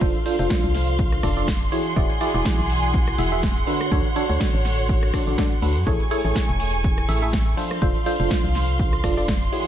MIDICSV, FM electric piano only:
0, 0, Header, 1, 2, 480
1, 0, Start_track
1, 0, Tempo, 487805
1, 13, Time_signature, 4, 2, 24, 8
1, 9516, End_track
2, 0, Start_track
2, 0, Title_t, "FM electric piano"
2, 0, Program_c, 0, 5
2, 12, Note_on_c, 0, 53, 99
2, 12, Note_on_c, 0, 69, 85
2, 12, Note_on_c, 0, 72, 104
2, 13, Note_on_c, 0, 62, 90
2, 13, Note_on_c, 0, 65, 88
2, 166, Note_off_c, 0, 53, 0
2, 166, Note_off_c, 0, 62, 0
2, 166, Note_off_c, 0, 65, 0
2, 166, Note_off_c, 0, 69, 0
2, 166, Note_off_c, 0, 72, 0
2, 252, Note_on_c, 0, 53, 99
2, 252, Note_on_c, 0, 62, 91
2, 252, Note_on_c, 0, 65, 93
2, 252, Note_on_c, 0, 69, 91
2, 252, Note_on_c, 0, 72, 112
2, 354, Note_off_c, 0, 53, 0
2, 354, Note_off_c, 0, 62, 0
2, 354, Note_off_c, 0, 65, 0
2, 354, Note_off_c, 0, 69, 0
2, 354, Note_off_c, 0, 72, 0
2, 385, Note_on_c, 0, 62, 80
2, 385, Note_on_c, 0, 65, 79
2, 385, Note_on_c, 0, 69, 80
2, 386, Note_on_c, 0, 53, 84
2, 386, Note_on_c, 0, 72, 96
2, 1187, Note_off_c, 0, 53, 0
2, 1187, Note_off_c, 0, 62, 0
2, 1187, Note_off_c, 0, 65, 0
2, 1187, Note_off_c, 0, 69, 0
2, 1187, Note_off_c, 0, 72, 0
2, 1212, Note_on_c, 0, 53, 88
2, 1212, Note_on_c, 0, 62, 81
2, 1212, Note_on_c, 0, 65, 77
2, 1212, Note_on_c, 0, 69, 79
2, 1212, Note_on_c, 0, 74, 94
2, 1326, Note_off_c, 0, 53, 0
2, 1326, Note_off_c, 0, 62, 0
2, 1326, Note_off_c, 0, 65, 0
2, 1326, Note_off_c, 0, 69, 0
2, 1326, Note_off_c, 0, 74, 0
2, 1345, Note_on_c, 0, 53, 90
2, 1345, Note_on_c, 0, 62, 79
2, 1345, Note_on_c, 0, 65, 79
2, 1345, Note_on_c, 0, 69, 80
2, 1346, Note_on_c, 0, 74, 95
2, 1478, Note_off_c, 0, 53, 0
2, 1478, Note_off_c, 0, 62, 0
2, 1478, Note_off_c, 0, 65, 0
2, 1478, Note_off_c, 0, 69, 0
2, 1478, Note_off_c, 0, 74, 0
2, 1692, Note_on_c, 0, 52, 78
2, 1692, Note_on_c, 0, 68, 69
2, 1693, Note_on_c, 0, 64, 71
2, 1693, Note_on_c, 0, 66, 70
2, 1693, Note_on_c, 0, 73, 90
2, 1901, Note_off_c, 0, 52, 0
2, 1901, Note_off_c, 0, 64, 0
2, 1901, Note_off_c, 0, 66, 0
2, 1901, Note_off_c, 0, 68, 0
2, 1901, Note_off_c, 0, 73, 0
2, 1932, Note_on_c, 0, 74, 103
2, 1933, Note_on_c, 0, 52, 100
2, 1933, Note_on_c, 0, 64, 92
2, 1933, Note_on_c, 0, 66, 90
2, 1933, Note_on_c, 0, 68, 92
2, 2086, Note_off_c, 0, 52, 0
2, 2086, Note_off_c, 0, 66, 0
2, 2086, Note_off_c, 0, 68, 0
2, 2086, Note_off_c, 0, 74, 0
2, 2087, Note_off_c, 0, 64, 0
2, 2173, Note_on_c, 0, 52, 103
2, 2173, Note_on_c, 0, 64, 98
2, 2173, Note_on_c, 0, 66, 95
2, 2173, Note_on_c, 0, 68, 91
2, 2173, Note_on_c, 0, 74, 111
2, 2274, Note_off_c, 0, 52, 0
2, 2274, Note_off_c, 0, 64, 0
2, 2274, Note_off_c, 0, 66, 0
2, 2274, Note_off_c, 0, 68, 0
2, 2274, Note_off_c, 0, 74, 0
2, 2306, Note_on_c, 0, 52, 87
2, 2306, Note_on_c, 0, 64, 79
2, 2306, Note_on_c, 0, 66, 77
2, 2306, Note_on_c, 0, 68, 80
2, 2306, Note_on_c, 0, 74, 96
2, 3107, Note_off_c, 0, 52, 0
2, 3107, Note_off_c, 0, 64, 0
2, 3107, Note_off_c, 0, 66, 0
2, 3107, Note_off_c, 0, 68, 0
2, 3107, Note_off_c, 0, 74, 0
2, 3133, Note_on_c, 0, 52, 85
2, 3133, Note_on_c, 0, 64, 79
2, 3133, Note_on_c, 0, 66, 80
2, 3133, Note_on_c, 0, 68, 78
2, 3133, Note_on_c, 0, 76, 91
2, 3246, Note_off_c, 0, 52, 0
2, 3246, Note_off_c, 0, 64, 0
2, 3246, Note_off_c, 0, 66, 0
2, 3246, Note_off_c, 0, 68, 0
2, 3246, Note_off_c, 0, 76, 0
2, 3266, Note_on_c, 0, 64, 79
2, 3266, Note_on_c, 0, 66, 77
2, 3266, Note_on_c, 0, 68, 77
2, 3266, Note_on_c, 0, 76, 95
2, 3267, Note_on_c, 0, 52, 86
2, 3399, Note_off_c, 0, 52, 0
2, 3399, Note_off_c, 0, 64, 0
2, 3399, Note_off_c, 0, 66, 0
2, 3399, Note_off_c, 0, 68, 0
2, 3399, Note_off_c, 0, 76, 0
2, 3613, Note_on_c, 0, 50, 75
2, 3613, Note_on_c, 0, 62, 69
2, 3613, Note_on_c, 0, 66, 72
2, 3613, Note_on_c, 0, 69, 69
2, 3613, Note_on_c, 0, 71, 88
2, 3821, Note_off_c, 0, 50, 0
2, 3821, Note_off_c, 0, 62, 0
2, 3821, Note_off_c, 0, 66, 0
2, 3821, Note_off_c, 0, 69, 0
2, 3821, Note_off_c, 0, 71, 0
2, 3853, Note_on_c, 0, 50, 92
2, 3853, Note_on_c, 0, 62, 87
2, 3853, Note_on_c, 0, 66, 91
2, 3853, Note_on_c, 0, 69, 90
2, 3853, Note_on_c, 0, 73, 107
2, 4006, Note_off_c, 0, 62, 0
2, 4006, Note_off_c, 0, 66, 0
2, 4006, Note_off_c, 0, 69, 0
2, 4006, Note_off_c, 0, 73, 0
2, 4007, Note_off_c, 0, 50, 0
2, 4093, Note_on_c, 0, 50, 101
2, 4093, Note_on_c, 0, 62, 98
2, 4093, Note_on_c, 0, 66, 93
2, 4093, Note_on_c, 0, 69, 95
2, 4093, Note_on_c, 0, 73, 113
2, 4194, Note_off_c, 0, 50, 0
2, 4194, Note_off_c, 0, 62, 0
2, 4194, Note_off_c, 0, 66, 0
2, 4194, Note_off_c, 0, 69, 0
2, 4194, Note_off_c, 0, 73, 0
2, 4226, Note_on_c, 0, 50, 88
2, 4226, Note_on_c, 0, 62, 81
2, 4226, Note_on_c, 0, 66, 82
2, 4226, Note_on_c, 0, 69, 79
2, 4226, Note_on_c, 0, 73, 97
2, 5027, Note_off_c, 0, 50, 0
2, 5027, Note_off_c, 0, 62, 0
2, 5027, Note_off_c, 0, 66, 0
2, 5027, Note_off_c, 0, 69, 0
2, 5027, Note_off_c, 0, 73, 0
2, 5053, Note_on_c, 0, 50, 84
2, 5053, Note_on_c, 0, 62, 77
2, 5053, Note_on_c, 0, 66, 74
2, 5053, Note_on_c, 0, 69, 75
2, 5053, Note_on_c, 0, 74, 92
2, 5166, Note_off_c, 0, 50, 0
2, 5166, Note_off_c, 0, 62, 0
2, 5166, Note_off_c, 0, 66, 0
2, 5166, Note_off_c, 0, 69, 0
2, 5166, Note_off_c, 0, 74, 0
2, 5186, Note_on_c, 0, 66, 70
2, 5186, Note_on_c, 0, 69, 68
2, 5187, Note_on_c, 0, 50, 76
2, 5187, Note_on_c, 0, 62, 72
2, 5187, Note_on_c, 0, 74, 84
2, 5277, Note_off_c, 0, 50, 0
2, 5277, Note_off_c, 0, 62, 0
2, 5277, Note_off_c, 0, 66, 0
2, 5277, Note_off_c, 0, 69, 0
2, 5277, Note_off_c, 0, 74, 0
2, 5293, Note_on_c, 0, 50, 93
2, 5293, Note_on_c, 0, 62, 79
2, 5293, Note_on_c, 0, 66, 82
2, 5293, Note_on_c, 0, 69, 82
2, 5293, Note_on_c, 0, 74, 101
2, 5447, Note_off_c, 0, 50, 0
2, 5447, Note_off_c, 0, 62, 0
2, 5447, Note_off_c, 0, 66, 0
2, 5447, Note_off_c, 0, 69, 0
2, 5447, Note_off_c, 0, 74, 0
2, 5533, Note_on_c, 0, 62, 73
2, 5533, Note_on_c, 0, 66, 68
2, 5533, Note_on_c, 0, 69, 69
2, 5533, Note_on_c, 0, 71, 83
2, 5687, Note_off_c, 0, 62, 0
2, 5687, Note_off_c, 0, 66, 0
2, 5687, Note_off_c, 0, 69, 0
2, 5687, Note_off_c, 0, 71, 0
2, 5773, Note_on_c, 0, 57, 96
2, 5773, Note_on_c, 0, 64, 86
2, 5773, Note_on_c, 0, 68, 89
2, 5773, Note_on_c, 0, 69, 88
2, 5773, Note_on_c, 0, 73, 99
2, 5927, Note_off_c, 0, 57, 0
2, 5927, Note_off_c, 0, 64, 0
2, 5927, Note_off_c, 0, 68, 0
2, 5927, Note_off_c, 0, 69, 0
2, 5927, Note_off_c, 0, 73, 0
2, 6013, Note_on_c, 0, 57, 98
2, 6013, Note_on_c, 0, 64, 90
2, 6013, Note_on_c, 0, 68, 90
2, 6013, Note_on_c, 0, 69, 92
2, 6013, Note_on_c, 0, 73, 114
2, 6114, Note_off_c, 0, 57, 0
2, 6114, Note_off_c, 0, 64, 0
2, 6114, Note_off_c, 0, 68, 0
2, 6114, Note_off_c, 0, 69, 0
2, 6114, Note_off_c, 0, 73, 0
2, 6146, Note_on_c, 0, 57, 89
2, 6146, Note_on_c, 0, 64, 78
2, 6146, Note_on_c, 0, 68, 81
2, 6146, Note_on_c, 0, 69, 82
2, 6146, Note_on_c, 0, 73, 96
2, 6947, Note_off_c, 0, 57, 0
2, 6947, Note_off_c, 0, 64, 0
2, 6947, Note_off_c, 0, 68, 0
2, 6947, Note_off_c, 0, 69, 0
2, 6947, Note_off_c, 0, 73, 0
2, 6972, Note_on_c, 0, 69, 79
2, 6972, Note_on_c, 0, 76, 100
2, 6973, Note_on_c, 0, 57, 91
2, 6973, Note_on_c, 0, 64, 77
2, 6973, Note_on_c, 0, 68, 76
2, 7086, Note_off_c, 0, 57, 0
2, 7086, Note_off_c, 0, 64, 0
2, 7086, Note_off_c, 0, 68, 0
2, 7086, Note_off_c, 0, 69, 0
2, 7086, Note_off_c, 0, 76, 0
2, 7106, Note_on_c, 0, 57, 86
2, 7106, Note_on_c, 0, 64, 82
2, 7106, Note_on_c, 0, 68, 74
2, 7106, Note_on_c, 0, 69, 80
2, 7106, Note_on_c, 0, 76, 93
2, 7238, Note_off_c, 0, 57, 0
2, 7238, Note_off_c, 0, 64, 0
2, 7238, Note_off_c, 0, 68, 0
2, 7238, Note_off_c, 0, 69, 0
2, 7238, Note_off_c, 0, 76, 0
2, 7452, Note_on_c, 0, 53, 76
2, 7452, Note_on_c, 0, 62, 73
2, 7453, Note_on_c, 0, 65, 73
2, 7453, Note_on_c, 0, 69, 69
2, 7453, Note_on_c, 0, 72, 87
2, 7661, Note_off_c, 0, 53, 0
2, 7661, Note_off_c, 0, 62, 0
2, 7661, Note_off_c, 0, 65, 0
2, 7661, Note_off_c, 0, 69, 0
2, 7661, Note_off_c, 0, 72, 0
2, 7692, Note_on_c, 0, 53, 95
2, 7692, Note_on_c, 0, 62, 90
2, 7692, Note_on_c, 0, 65, 90
2, 7692, Note_on_c, 0, 69, 87
2, 7692, Note_on_c, 0, 72, 109
2, 7846, Note_off_c, 0, 53, 0
2, 7846, Note_off_c, 0, 62, 0
2, 7846, Note_off_c, 0, 65, 0
2, 7846, Note_off_c, 0, 69, 0
2, 7846, Note_off_c, 0, 72, 0
2, 7933, Note_on_c, 0, 53, 103
2, 7933, Note_on_c, 0, 62, 93
2, 7933, Note_on_c, 0, 65, 92
2, 7933, Note_on_c, 0, 69, 89
2, 7933, Note_on_c, 0, 72, 112
2, 8034, Note_off_c, 0, 53, 0
2, 8034, Note_off_c, 0, 62, 0
2, 8034, Note_off_c, 0, 65, 0
2, 8034, Note_off_c, 0, 69, 0
2, 8034, Note_off_c, 0, 72, 0
2, 8066, Note_on_c, 0, 53, 88
2, 8066, Note_on_c, 0, 62, 79
2, 8066, Note_on_c, 0, 65, 78
2, 8066, Note_on_c, 0, 69, 82
2, 8066, Note_on_c, 0, 72, 95
2, 8867, Note_off_c, 0, 53, 0
2, 8867, Note_off_c, 0, 62, 0
2, 8867, Note_off_c, 0, 65, 0
2, 8867, Note_off_c, 0, 69, 0
2, 8867, Note_off_c, 0, 72, 0
2, 8893, Note_on_c, 0, 53, 88
2, 8893, Note_on_c, 0, 62, 78
2, 8893, Note_on_c, 0, 65, 78
2, 8893, Note_on_c, 0, 69, 82
2, 8893, Note_on_c, 0, 74, 96
2, 9006, Note_off_c, 0, 53, 0
2, 9006, Note_off_c, 0, 62, 0
2, 9006, Note_off_c, 0, 65, 0
2, 9006, Note_off_c, 0, 69, 0
2, 9006, Note_off_c, 0, 74, 0
2, 9026, Note_on_c, 0, 53, 84
2, 9026, Note_on_c, 0, 62, 78
2, 9026, Note_on_c, 0, 65, 80
2, 9026, Note_on_c, 0, 69, 78
2, 9026, Note_on_c, 0, 74, 98
2, 9158, Note_off_c, 0, 53, 0
2, 9158, Note_off_c, 0, 62, 0
2, 9158, Note_off_c, 0, 65, 0
2, 9158, Note_off_c, 0, 69, 0
2, 9158, Note_off_c, 0, 74, 0
2, 9372, Note_on_c, 0, 52, 76
2, 9372, Note_on_c, 0, 64, 69
2, 9372, Note_on_c, 0, 66, 72
2, 9372, Note_on_c, 0, 68, 72
2, 9372, Note_on_c, 0, 73, 85
2, 9516, Note_off_c, 0, 52, 0
2, 9516, Note_off_c, 0, 64, 0
2, 9516, Note_off_c, 0, 66, 0
2, 9516, Note_off_c, 0, 68, 0
2, 9516, Note_off_c, 0, 73, 0
2, 9516, End_track
0, 0, End_of_file